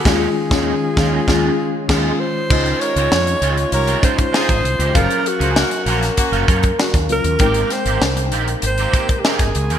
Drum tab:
CC |x-----------x---|x---------------|----------------|----------------|
HH |----------------|-xxx-xxxxxxx-xxx|xxxx-xxxxxxx-xxx|xxxx-xxxxxxx-xxx|
SD |o--o--o-o---o---|----o-------o---|----o--o----oo--|--o-o-------oo--|
BD |o--o--o-o---o---|o---------oo-o--|o-------o-oo-o--|o---------oo-o--|